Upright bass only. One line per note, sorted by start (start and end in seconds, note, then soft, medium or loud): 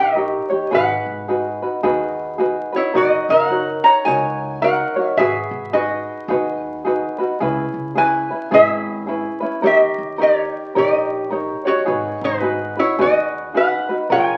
0.00 0.34 A#1 loud
0.73 0.95 G#1 medium
1.06 1.57 G#1 medium
1.83 2.56 D#2 loud
2.95 3.17 F#1 medium
3.29 3.79 F#1 medium
4.06 4.78 C#2 loud
5.17 5.40 G#1 medium
5.51 6.02 G#1 medium
6.28 7.01 D#2 loud
7.40 7.63 C#2 medium
7.74 8.24 C#2 medium
8.52 9.24 G#1 loud
9.64 9.86 D#2 medium
9.98 10.48 D#2 medium
10.76 11.48 A#1 medium
11.88 12.10 G#1 medium
12.21 12.72 G#1 medium
12.99 13.71 D#2 loud
14.10 14.32 A#1 medium